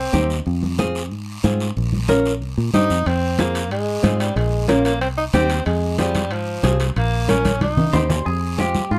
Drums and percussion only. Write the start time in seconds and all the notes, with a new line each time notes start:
0.14 high conga, short guiro
0.30 short guiro
0.46 high conga, long guiro
0.63 high conga
0.79 high conga, short guiro
0.95 short guiro
1.11 high conga, long guiro
1.44 high conga, short guiro
1.60 short guiro
1.76 high conga, long guiro
1.93 high conga
2.09 high conga, short guiro
2.26 short guiro
2.41 high conga, long guiro
2.74 high conga, short guiro
2.90 short guiro
3.06 high conga, high timbale, long guiro
3.39 high conga, high timbale, short guiro
3.55 high timbale, short guiro
3.71 high conga, high timbale, long guiro
4.04 high conga, high timbale, short guiro
4.20 high timbale, short guiro
4.36 high conga, high timbale, long guiro
4.69 high conga, high timbale, short guiro
4.85 high timbale, short guiro
5.01 high conga, high timbale, long guiro
5.34 high conga, high timbale, low timbale, short guiro
5.50 high timbale, short guiro
5.66 high conga, high timbale, long guiro
5.98 high conga, high timbale, short guiro
6.15 high conga, high timbale, short guiro
6.31 high conga, high timbale, long guiro
6.63 high conga, high timbale, low timbale, short guiro
6.80 high timbale, short guiro
6.96 high conga, high timbale, long guiro
7.29 high conga, high timbale, short guiro
7.45 high conga, high timbale, short guiro
7.61 high conga, high timbale, long guiro
7.77 low conga, high timbale
7.93 low conga, high timbale, short guiro
8.10 low conga, low timbale, short guiro
8.26 high conga, long guiro
8.58 high conga, short guiro
8.75 high conga, short guiro
8.91 high conga, long guiro